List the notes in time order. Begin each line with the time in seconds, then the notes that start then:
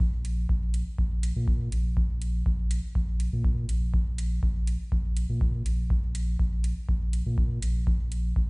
0.00 kick
0.13 A#1
0.25 closed hi-hat
0.49 A#1, kick
0.74 closed hi-hat
0.98 A#1, kick
1.23 closed hi-hat
1.36 A#2
1.48 kick
1.72 A#1, closed hi-hat
1.97 kick
2.10 A#1
2.22 closed hi-hat
2.46 A#1, kick
2.71 closed hi-hat
2.95 A#1, kick
3.20 closed hi-hat
3.33 A#2
3.44 kick
3.69 A#1, closed hi-hat
3.94 kick
4.07 A#1
4.18 closed hi-hat
4.43 A#1, kick
4.67 closed hi-hat
4.92 A#1, kick
5.17 closed hi-hat
5.29 A#2
5.41 kick
5.66 A#1, closed hi-hat
5.90 kick
6.03 A#1
6.15 closed hi-hat
6.39 A#1, kick
6.64 closed hi-hat
6.89 A#1, kick
7.13 closed hi-hat
7.26 A#2
7.38 kick
7.62 A#1, closed hi-hat
7.87 kick
8.00 A#1
8.12 closed hi-hat
8.36 A#1, kick